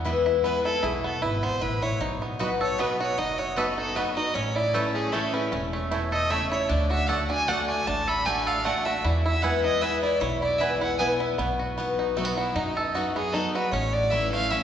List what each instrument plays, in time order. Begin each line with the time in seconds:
Already playing: steel-string acoustic guitar E2, upright bass E2, five-string banjo B3
0.05 steel-string acoustic guitar E3 G#3 B3 E4, five-string banjo E4
0.26 five-string banjo E4
0.44 steel-string acoustic guitar E3 G#3 B3 E4, five-string banjo B3, fiddle B4
0.65 five-string banjo E4, fiddle A4
0.83 upright bass B1, steel-string acoustic guitar B2, five-string banjo E4, fiddle G#4
1.04 five-string banjo B3, fiddle A4
1.22 upright bass G#1, steel-string acoustic guitar G#2, five-string banjo E4, fiddle B4
1.43 five-string banjo B3, fiddle C5
1.61 upright bass A1, steel-string acoustic guitar A2, five-string banjo E4, fiddle B4
1.82 five-string banjo E4, fiddle C#5
2.00 upright bass B1, steel-string acoustic guitar B2, five-string banjo D#4
2.22 five-string banjo B3
2.39 steel-string acoustic guitar F#3 B3 D#4 F#4, mandolin B3 F#4 D#5 B5, five-string banjo F#4
2.61 five-string banjo A4, fiddle C#5
2.78 steel-string acoustic guitar F#3 B3 D#4 F#4, mandolin B3 F#4 D#5 B5, five-string banjo B3, fiddle B4
3.00 five-string banjo F#4, fiddle C#5
3.17 upright bass F#1, steel-string acoustic guitar F#2, five-string banjo D#4, fiddle D#5
3.38 five-string banjo F#4, fiddle C#5
3.56 steel-string acoustic guitar F#3 B3 D#4 F#4, mandolin B3 F#4 D#5 B5, five-string banjo A4, fiddle B4
3.78 five-string banjo D#4, fiddle A4
3.95 steel-string acoustic guitar F#3 B3 D#4 F#4, mandolin B3 F#4 D#5 B5, five-string banjo B3, fiddle B4
4.16 five-string banjo D#4, steel-string acoustic guitar D#4 F#4, fiddle D#5
4.34 upright bass A1, steel-string acoustic guitar A2, five-string banjo C#4, fiddle C#5
4.55 five-string banjo E4, fiddle D5
4.74 steel-string acoustic guitar E3 A3 C#4 E4, mandolin A3 E4 C#5 A5, five-string banjo A4, fiddle B4
4.94 five-string banjo C#4, fiddle G#4
5.12 steel-string acoustic guitar E3 A3 C#4 E4, five-string banjo A3, mandolin A3 E4 C#5 A5, fiddle A4
5.33 five-string banjo C#4, steel-string acoustic guitar C#4 E4, fiddle B4
5.52 upright bass E1, steel-string acoustic guitar E2, five-string banjo C#4
5.73 five-string banjo A3
5.91 steel-string acoustic guitar B2, mandolin A3 E4 C#5 A5, five-string banjo E4
6.12 five-string banjo A4, fiddle D#5
6.30 steel-string acoustic guitar C#3, five-string banjo A3, mandolin A3 E4 C#5 A5, fiddle E5
6.51 five-string banjo E4, fiddle C#5
6.69 upright bass D2, steel-string acoustic guitar D3, five-string banjo D4, fiddle D5
6.90 five-string banjo F#4, fiddle E5
7.08 steel-string acoustic guitar D3 A3 D4 F#4, mandolin A3 F#4 D5 A5, five-string banjo A4, fiddle F#5
7.29 five-string banjo D4, steel-string acoustic guitar D4 F#4, fiddle G#5
7.48 steel-string acoustic guitar D3 A3 D4 F#4, mandolin A3 F#4 D5 A5, five-string banjo A3, fiddle F#5
7.68 five-string banjo D4, fiddle G#5
7.87 upright bass A1, steel-string acoustic guitar A2, five-string banjo D4, fiddle A5
8.08 five-string banjo A4, fiddle B5
8.25 steel-string acoustic guitar D3 A3 D4 F#4, mandolin A3 F#4 D5 A5, five-string banjo A3, fiddle G#5
8.47 five-string banjo A4, fiddle F5
8.65 steel-string acoustic guitar D3 A3 D4 F#4, mandolin A3 F#4 D5 A5, five-string banjo A3, fiddle F#5
8.85 steel-string acoustic guitar D4 F#4, five-string banjo F#4, fiddle E5
9.04 steel-string acoustic guitar E2, upright bass E2, five-string banjo E4, fiddle D5
9.25 five-string banjo E4, fiddle E5
9.42 steel-string acoustic guitar E3 G#3 B3 E4, mandolin B3 E4 B4 G#5, five-string banjo E4, fiddle F#5
9.64 five-string banjo E4, fiddle D#5
9.81 steel-string acoustic guitar E3 G#3 B3 E4, mandolin B3 E4 B4 G#5, five-string banjo B3, fiddle E5
10.02 five-string banjo E4, fiddle D5
10.20 upright bass B1, steel-string acoustic guitar B2, five-string banjo E4, fiddle C#5
10.41 five-string banjo E4, fiddle D5
10.58 steel-string acoustic guitar E3 G#3 B3 E4, mandolin B3 E4 B4 G#5, five-string banjo E4, fiddle E5
10.80 five-string banjo E4, fiddle F#5
10.98 steel-string acoustic guitar E3 G#3 B3 E4, mandolin B3 E4 B4 G#5, five-string banjo B3, fiddle G#5
11.20 steel-string acoustic guitar B3 E4, five-string banjo E4
11.38 upright bass B1, steel-string acoustic guitar B2, five-string banjo B3
11.59 five-string banjo F#4
11.78 steel-string acoustic guitar F#3 B3 D#4 F#4, five-string banjo B3
11.99 five-string banjo D#4
12.16 steel-string acoustic guitar F#3 B3 D#4 F#4, five-string banjo A3, fiddle F#4
12.25 five-string banjo B3
12.37 fiddle E4, five-string banjo F#4
12.55 upright bass F#2, steel-string acoustic guitar F#2, five-string banjo D#4, fiddle D#4
12.77 five-string banjo A4
12.95 steel-string acoustic guitar F#3 B3 D#4 F#4, five-string banjo F#4
13.15 five-string banjo B3, fiddle G#4
13.32 steel-string acoustic guitar F#3 B3 D#4 F#4, five-string banjo D#4, fiddle A4
13.54 steel-string acoustic guitar D#4 F#4, five-string banjo F#4, fiddle B4
13.72 upright bass A1, steel-string acoustic guitar A2, five-string banjo C#4, fiddle C#5
13.93 fiddle D5
14.11 steel-string acoustic guitar E3 A3 C#4 E4, five-string banjo E4, fiddle E5
14.32 five-string banjo A3, steel-string acoustic guitar C#4 E4, fiddle F5
14.50 steel-string acoustic guitar E3 A3 C#4 E4, five-string banjo C#4, fiddle E5